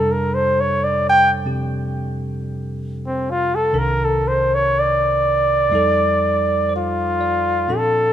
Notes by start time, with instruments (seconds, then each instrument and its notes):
Already playing: tine electric piano F2 C3 G3 D4 A4, flugelhorn A4
0.12 flugelhorn A#4
0.34 flugelhorn C5
0.60 flugelhorn C#5
0.84 flugelhorn D5
1.10 flugelhorn G5
1.45 tine electric piano C3 F3 C4 G4
3.06 flugelhorn C4
3.30 flugelhorn F4
3.55 flugelhorn A4
3.73 tine electric piano C2 C3 D#3 D4 A#4
3.79 flugelhorn A#4
4.05 flugelhorn A4
4.28 flugelhorn C5
4.54 flugelhorn C#5
4.79 flugelhorn D5
5.70 tine electric piano F2 F3 G3 D#4
5.75 tine electric piano A4
6.69 tine electric piano C5
6.76 flugelhorn F4
7.21 tine electric piano D5
7.68 tine electric piano A#2 F3 C4 D4 A4
7.77 flugelhorn A4